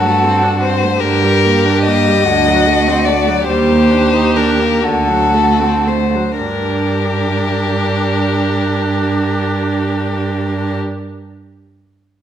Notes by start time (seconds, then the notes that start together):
Already playing: G2 F#4 A4
0.05 A3
0.23 C4
0.43 D4
0.61 C4 C5
0.83 A3
1.00 G2 D3 G4 A#4
1.24 G3
1.45 A#3
1.66 D4
1.85 A#3 D#5
2.08 G3
2.26 D2 D3 F#4
2.47 F#3
2.67 A3
2.88 C4
3.05 A3 D5
3.28 F#3
3.47 D#2 G3 G4 C5
3.70 A#3
3.91 D4
4.14 D#4
4.36 D4 A#4
4.59 A#3
4.83 D2 D3 F#4 A4
5.09 F#3
5.34 A3
5.60 C4
5.87 A3 C5
6.15 F#3
6.38 G2 D4 G4 A#4